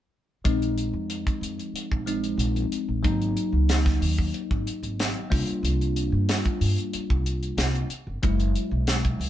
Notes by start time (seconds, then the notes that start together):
0.44 A#1 F3 G#3 C4 D#4, kick, closed hi-hat
0.62 closed hi-hat
0.78 closed hi-hat
0.93 F2
1.10 closed hi-hat
1.27 kick, closed hi-hat
1.41 F2, closed hi-hat
1.59 closed hi-hat
1.73 muted upright bass stroke, closed hi-hat
1.91 A#1, kick
2.06 F3 G#3 C4 D#4, closed hi-hat
2.24 closed hi-hat
2.37 A#1, closed hi-hat
2.56 closed hi-hat
2.71 muted upright bass stroke, closed hi-hat
2.88 A#1
3.03 G#1 F#3 A#3 C#4 D#4, kick, closed hi-hat
3.22 closed hi-hat
3.37 closed hi-hat
3.52 C#2
3.69 snare, closed hi-hat
3.86 kick, snare, closed hi-hat
4.01 D#2, open hi-hat
4.19 kick
4.34 closed hi-hat
4.51 G#1, kick
4.67 closed hi-hat
4.83 G#1, closed hi-hat
5.00 snare, closed hi-hat
5.30 C2 G3 A#3 D4 F4, kick, open hi-hat
5.48 muted upright bass stroke, closed hi-hat
5.63 C2, closed hi-hat
5.81 closed hi-hat
5.96 closed hi-hat
6.12 G2
6.29 snare, closed hi-hat
6.45 kick, closed hi-hat
6.61 G2, open hi-hat
6.78 closed hi-hat
6.93 muted upright bass stroke, closed hi-hat
7.10 C2, kick
7.26 closed hi-hat
7.43 closed hi-hat
7.57 C2, snare, closed hi-hat
7.75 closed hi-hat
7.89 muted upright bass stroke, closed hi-hat
8.07 G1
8.23 F#1 F#3 G#3 C#4 E4, kick, closed hi-hat
8.40 closed hi-hat
8.55 closed hi-hat
8.71 B1
8.87 snare, closed hi-hat
9.05 kick, closed hi-hat
9.20 C#2, open hi-hat